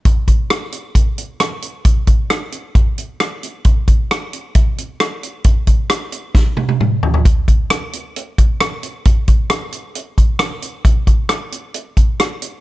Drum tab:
HH |x-x-x-x-x-x-x-x-|x-x-x-x-x-x-x-x-|x-x-x-x-x-x-x-x-|x-x-x-x---------|
SD |----r-------r---|----r-------r---|----r-------r---|----r---o-------|
T1 |----------------|----------------|----------------|----------oo----|
T2 |----------------|----------------|----------------|------------o---|
FT |----------------|----------------|----------------|--------------oo|
BD |o-o-----o-------|o-o-----o-------|o-o-----o-------|o-o-----o-------|

HH |x-x-x-x-x-x-x-x-|x-x-x-x-x-x-x-x-|x-x-x-x-x-x-x-x-|
SD |----r-------r---|----r-------r---|----r-------r---|
T1 |----------------|----------------|----------------|
T2 |----------------|----------------|----------------|
FT |----------------|----------------|----------------|
BD |o-o-------o-----|o-o-------o-----|o-o-------o-----|